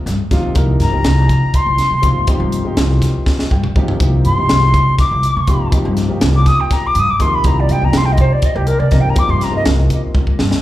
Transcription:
0.06 G2, snare, closed hi-hat
0.19 muted upright bass stroke
0.31 D#2 C3 F3 A#3 D#4 F4, kick, snare, closed hi-hat
0.54 C2 C3 F3 A#3 D#4 A#4, kick, closed hi-hat
0.80 G2 A#5, snare, closed hi-hat
0.92 C2 C3 F3 A#3 D#4 G4
1.04 C2, snare, closed hi-hat
1.29 C3, kick, closed hi-hat
1.54 C6, muted upright bass stroke, kick, closed hi-hat
1.66 C2
1.78 snare, closed hi-hat
1.91 C3
2.02 C3 F3 A#3 D#4 F4, kick, closed hi-hat
2.15 G2
2.27 C3 F3 A#3 D#4 G4, kick, closed hi-hat
2.40 G2
2.52 closed hi-hat
2.64 C3 F3 A#3 D#4 G4, muted upright bass stroke
2.77 C2, snare, closed hi-hat
3.02 kick, snare, closed hi-hat
3.26 kick, snare
3.39 snare
3.51 G2 G5, kick
3.64 muted upright bass stroke, mid tom
3.76 D#2 C3 F3 A#3 D#4 G4 D#5, kick
3.88 floor tom
4.00 C2 C3 F3 A#3 D#4 G4, kick, closed hi-hat
4.25 G2 C6, closed hi-hat
4.37 C2 C3 F3 A#3 D#4 G4
4.49 C2, snare, closed hi-hat
4.74 C3, kick, closed hi-hat
4.98 D6, muted upright bass stroke, kick, snare, closed hi-hat
5.11 C2
5.23 closed hi-hat
5.37 C3
5.47 C3 F3 A#3 D#4 G4, kick, closed hi-hat
5.61 G2
5.72 C3 F3 A#3 D#4 G4, kick, closed hi-hat
5.85 G2
5.97 snare, closed hi-hat
6.09 C3 F3 A#3 D#4 G4, muted upright bass stroke
6.21 C2, snare, closed hi-hat
6.35 D6
6.46 D#6, kick, snare, closed hi-hat
6.60 G5
6.71 A#5, kick, snare, closed hi-hat
6.86 D6
6.95 G2 D#6, closed hi-hat
7.08 D6, muted upright bass stroke
7.20 D#2 C3 F3 A#3 D#4 A#4 C6, kick, closed hi-hat
7.34 B5
7.44 C2 C3 F3 A#3 D#4 G4 A#5, kick, closed hi-hat
7.60 D5
7.69 G2 G5, closed hi-hat
7.81 C2 C3 F3 A#3 D#4 G4 A#5
7.93 C2 C6, snare, closed hi-hat
8.05 G5
8.12 D#5
8.18 C3 C5, kick, closed hi-hat
8.32 D5
8.42 D#5, muted upright bass stroke, kick, closed hi-hat
8.55 C2 G4
8.67 A#4, closed hi-hat
8.79 C3 D5
8.91 C3 F3 A#3 D#4 A#4 D#5, kick, snare, closed hi-hat
9.00 G2 G5
9.09 A#5
9.15 C3 F3 A#3 D#4 G4 D6, kick, closed hi-hat
9.29 G2 C6
9.41 A#5, snare, closed hi-hat
9.52 C3 F3 A#3 D#4 A#4, muted upright bass stroke
9.56 D#5
9.65 C2, snare, closed hi-hat
9.90 kick, closed hi-hat
10.14 kick, high tom
10.27 kick
10.39 G2, snare
10.51 muted upright bass stroke, snare

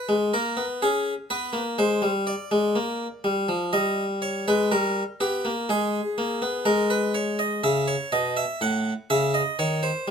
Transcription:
Already playing: B4
0.09 G#3
0.34 A#3 A#4
0.57 B3
0.82 C#4 G#4
1.30 B3 B4
1.53 A#3
1.78 G#3 C5
2.02 G3
2.27 D5
2.51 G#3
2.75 A#3
3.24 G3
3.49 F3
3.73 G3 D#5
4.22 C#5
4.48 G#3 B4
4.72 G3 A#4
5.20 B3 G4
5.45 A#3
5.69 G#3 G#4
6.18 A#3
6.42 B3
6.65 G#3 A#4
6.90 B4
7.14 C#5
7.39 D#5
7.64 C#3 E5
7.88 C#5
8.12 B2 D#5
8.37 E5
8.61 A2 F#5
9.10 C#3 E5
9.34 D#5
9.59 D#3 C#5
9.83 C5
10.08 G3

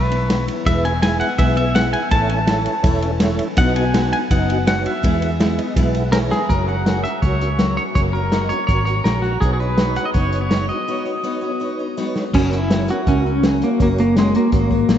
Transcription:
Already playing: B1 E2 B2 E3 G#3 B3 E4 B4
0.11 E3 G#3 B3 E4, ride
0.30 E3 G#3 B3 E4, snare, ride
0.48 E3 G#3 B3 E4, ride
0.66 E1 E2 B2 E3 G#3 B3 E4 G#4 B4 E5, kick, ride
0.85 E3 G#3 B3 E4 G#5, ride
1.02 E3 G#3 B3 E4 G#4 B4 E5 G#5, snare, ride
1.20 E3 G#3 B3 E4 F#5, ride
1.38 B1 E2 B2 E3 G#3 B3 E4 G#4 B4 E5, kick, ride
1.56 E3 G#3 B3 E4 E5, ride
1.74 E3 G#3 B3 E4 G#4 B4 E5 F#5, snare, ride
1.93 E3 G#3 B3 E4 G#5, ride
2.10 A1 A2 E3 A3 C#4 E4 A4 C#5 E5 A5, kick, ride
2.29 A3 C#4 E4 A5, ride
2.47 E3 A3 C#4 E4 A4 C#5 E5, snare, ride
2.66 A3 C#4 E4, ride
2.83 E1 A2 E3 A3 C#4 E4 A4 C#5 E5, kick, ride
3.02 A3 C#4 E4, ride
3.20 E3 A3 C#4 E4 A4 C#5 E5, snare, ride
3.39 C#4 E4, ride
3.43 A3
3.57 B1 B2 F#3 B3 D#4 F#4 B4 D#5 F#5, kick, ride
3.76 B3 D#4 F#4 G#5, ride
3.94 F#3 B3 D#4 F#4 B4 F#5, snare, ride
4.13 B3 D#4 F#4 G#5, ride
4.30 F#1 B2 F#3 B3 D#4 F#4 B4 D#5 F#5, kick, ride
4.49 B3 D#4 F#4, ride
4.67 F#3 B3 D#4 F#4 B4 C#5 F#5, snare, ride
4.85 B3 D#4 F#4 E5, ride
5.03 E2 B2 E3 G#3 B3 E4 G#4 B4 E5, kick, ride
5.22 E3 G#3 B3 G#4, ride
5.40 E3 G#3 B3 E4 G#4 B4 E5, snare, ride
5.58 E3 G#3 B3 G#4 D#5, ride
5.76 B1 E2 B2 E3 G#3 B3 E4 G#4 B4 E5, kick, ride
5.94 E3 G#3 B3 G#4 F#5, ride
6.12 E3 G#3 B3 E4 G#4 A#4 B4 C#5 G#5, snare, ride
6.31 E3 G#3 B3 G#4 B5, snare
6.49 F#1 F#2 C#3 F#3 A#3 C#4 F#4 A#4 C#5, kick, closed hi-hat
6.68 F#3 A#3 C#4 F#4 F#5
6.86 F#2 C#3 F#3 A#3 C#4 F#4 A#4 C#5, snare, closed hi-hat
7.04 F#3 A#3 C#4 F#4 E5, closed hi-hat
7.22 C#2 F#3 A#3 C#4 F#4 A#4 C#5, kick, closed hi-hat
7.41 F#3 A#3 C#4 F#4, closed hi-hat
7.59 F#2 C#3 F#3 A#3 C#4 F#4 A#4 C#5, snare, closed hi-hat
7.77 F#3 A#3 C#4 F#4 C#5
7.95 F#1 F#2 C#3 F#3 A#3 C#4 F#4 A#4 C#5, kick, closed hi-hat
8.13 F#3 A#3 C#4 F#4 A#4
8.32 F#2 C#3 F#3 A#3 C#4 F#4 A#4 D#5, snare, closed hi-hat
8.49 F#3 A#3 C#4 F#4 C#5, closed hi-hat
8.67 G#1 F#3 A#3 C#4 F#4 A#4 C#5, kick, closed hi-hat
8.85 F#3 A#3 C#4 F#4 C#5, closed hi-hat
9.04 A#1 F#2 C#3 F#3 A#3 C#4 F#4 A#4 C#5, snare, closed hi-hat
9.22 F#3 A#3 C#4 F#4
9.41 B1 B3 D#4 F#4 G#4 B4 C#5, kick, closed hi-hat
9.53 G#4
9.60 D#4 F#4 B4 C#5
9.78 B3 D#4 F#4 B4 C#5, snare, closed hi-hat
9.96 D#4 F#4 C#5 F#5, closed hi-hat
10.05 D#5
10.14 F#1 B3 D#4 F#4 B4 C#5, kick, closed hi-hat
10.32 D#4 F#4 C#5, closed hi-hat
10.41 C#5
10.51 B3 D#4 F#4 B4 C#5, snare, closed hi-hat
10.69 D#4 F#4 C#5 D#5
10.88 B3 D#4 F#4 B4 C#5
11.05 D#4 F#4 C#5
11.24 B3 D#4 F#4 B4 C#5
11.41 D#4 F#4 C#5
11.60 B3 D#4 F#4 B4 C#5
11.79 D#4 F#4 C#5
11.97 B3 D#4 F#4 B4 C#5, snare
12.15 D#4 F#4 C#5, snare
12.33 F#1 F#3 A#3 C#4 F#4 A#4 C#5, kick, crash
12.52 C#4 E4 F#4 A#4, closed hi-hat
12.70 F#3 A#3 C#4 F#4 A#4 C#5, snare, closed hi-hat
12.88 C#4 F#4 A#4 C#5, closed hi-hat
13.07 C#2 A#3 C#4 F#4 A#4 E5, kick, closed hi-hat
13.26 C#4 F#4 A#4
13.43 F#3 A#3 C#4 F#4 A#4 C#5, snare, closed hi-hat
13.62 A#3 C#4 F#4 A#4, closed hi-hat
13.80 F#1 F#3 A#3 C#4 F#4 A#4 C#5, kick, closed hi-hat
13.98 A#3 C#4 F#4 A#4, closed hi-hat
14.16 F#3 G#3 A#3 C#4 F#4 A#4 C#5, snare, closed hi-hat
14.34 A#3 C#4 F#4 A#4 C#5, closed hi-hat
14.52 G#1 A#3 C#4 F#4 A#4 C#5, kick, closed hi-hat
14.71 C#4 F#4 A#4, kick
14.89 A#1 F#3 A#3 C#4 F#4 A#4 C#5, snare, closed hi-hat

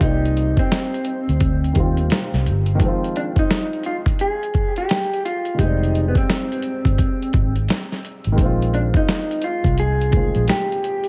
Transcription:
Already playing: G3 D#4
0.01 C2 A#3 C4 D#4, kick, closed hi-hat
0.08 D5
0.25 closed hi-hat
0.37 closed hi-hat
0.57 C4, kick, closed hi-hat
0.72 snare, closed hi-hat
0.94 closed hi-hat
1.05 closed hi-hat
1.29 D2, closed hi-hat
1.40 kick, closed hi-hat
1.64 closed hi-hat
1.73 D#2 D#3 G3 A#3, kick, closed hi-hat
1.78 C4 F4
1.97 closed hi-hat
2.10 snare, closed hi-hat
2.34 C2, snare, closed hi-hat
2.46 G1, closed hi-hat
2.66 closed hi-hat
2.75 D#3 F3
2.80 G#3, kick, closed hi-hat
2.85 C4 F4
3.04 closed hi-hat
3.16 D4, closed hi-hat
3.36 D#4, kick, closed hi-hat
3.50 snare, closed hi-hat
3.73 closed hi-hat
3.83 F4, closed hi-hat
4.06 kick, closed hi-hat
4.19 G#4, closed hi-hat
4.43 closed hi-hat
4.54 kick, closed hi-hat
4.76 G4, closed hi-hat
4.89 snare, closed hi-hat
5.14 closed hi-hat
5.25 F4, closed hi-hat
5.45 closed hi-hat
5.54 D#3 G3
5.59 F1 G#3 D#4, kick, closed hi-hat
5.64 C4 D5
5.83 closed hi-hat
5.95 closed hi-hat
6.08 B3
6.15 C4, kick, closed hi-hat
6.30 snare, closed hi-hat
6.52 closed hi-hat
6.62 closed hi-hat
6.85 G1, kick, closed hi-hat
6.98 kick, closed hi-hat
7.22 closed hi-hat
7.33 G#1, kick, closed hi-hat
7.55 closed hi-hat
7.68 snare, closed hi-hat
7.92 snare, closed hi-hat
8.05 closed hi-hat
8.24 G#1, closed hi-hat
8.32 D#3 G#3
8.38 A#1 A#3, kick, closed hi-hat
8.42 C4 F4
8.62 closed hi-hat
8.74 D4, closed hi-hat
8.94 D#4, kick, closed hi-hat
9.09 snare, closed hi-hat
9.31 closed hi-hat
9.42 F4, closed hi-hat
9.64 C2, kick, closed hi-hat
9.78 G#4, closed hi-hat
10.01 closed hi-hat
10.11 D#3 G#3 A#3, kick, closed hi-hat
10.15 C4 F4
10.35 A#1, closed hi-hat
10.48 G4, snare, closed hi-hat
10.72 closed hi-hat
10.84 closed hi-hat
11.04 closed hi-hat

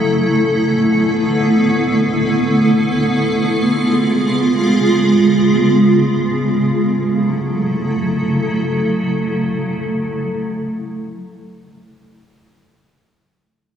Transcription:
Already playing: D3 A3 B3 E4 A4
3.24 C#3 G#3 F4 G#4
6.55 C#3 F#3 A3 E4 A4

